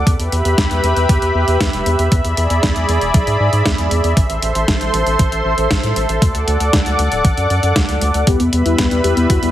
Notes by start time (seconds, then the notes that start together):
0.07 E2 G4 B4 E5 B5, kick, closed hi-hat
0.19 E2, closed hi-hat
0.32 E2, closed hi-hat
0.45 E2, closed hi-hat
0.58 E2, kick, snare, closed hi-hat
0.71 E2, closed hi-hat
0.84 E2, closed hi-hat
0.96 E2, closed hi-hat
1.09 E2, kick, closed hi-hat
1.22 E2, closed hi-hat
1.35 E2
1.48 E2, closed hi-hat
1.61 E2, kick, snare, closed hi-hat
1.73 E1, closed hi-hat
1.86 E2, closed hi-hat
1.99 E2, closed hi-hat
2.12 E2 G#4 D5 B5, kick, closed hi-hat
2.25 E2, closed hi-hat
2.37 E2, closed hi-hat
2.50 E2, closed hi-hat
2.63 E2, kick, snare, closed hi-hat
2.76 E2, closed hi-hat
2.89 E2, closed hi-hat
3.01 E1, closed hi-hat
3.14 B1, kick, closed hi-hat
3.27 G#2, closed hi-hat
3.40 G#2
3.53 G#2, closed hi-hat
3.66 E2, kick, snare, closed hi-hat
3.78 E2, closed hi-hat
3.91 E2, closed hi-hat
4.04 E2, closed hi-hat
4.17 A1 A4 C5 C6, kick, closed hi-hat
4.30 A1, closed hi-hat
4.42 A1, closed hi-hat
4.55 A1, closed hi-hat
4.68 A1, kick, snare, closed hi-hat
4.81 A1, closed hi-hat
4.94 A1, closed hi-hat
5.07 A1, closed hi-hat
5.19 A1, kick, closed hi-hat
5.32 A1, closed hi-hat
5.45 A1
5.58 A1, closed hi-hat
5.71 kick, snare, closed hi-hat
5.83 A2, closed hi-hat
5.96 A1, closed hi-hat
6.09 A1, closed hi-hat
6.22 D2 D5 F#5 D6, kick, closed hi-hat
6.35 D2, closed hi-hat
6.47 D2, closed hi-hat
6.60 D2, closed hi-hat
6.73 D2, kick, snare, closed hi-hat
6.86 D2, closed hi-hat
6.99 D2, closed hi-hat
7.12 D1, closed hi-hat
7.25 A1, kick, closed hi-hat
7.37 F#2, closed hi-hat
7.50 F#2, closed hi-hat
7.63 F#2, closed hi-hat
7.76 D2, kick, snare, closed hi-hat
7.89 D2, closed hi-hat
8.02 D2, closed hi-hat
8.14 D2, closed hi-hat
8.27 E2 G3 B3 E4 G4 B4 E5 B5, kick, closed hi-hat
8.40 E2 B3, closed hi-hat
8.53 E2 B3, closed hi-hat
8.66 E2 B3 E4 G4 B4, closed hi-hat
8.78 E2 B3, kick, snare, closed hi-hat
8.91 E2 B3, closed hi-hat
9.04 E2 B3 E4 G4 B4, closed hi-hat
9.17 E2 B3, closed hi-hat
9.30 E2 F#4, kick, closed hi-hat
9.42 E2 B3 E4 G4 A4, closed hi-hat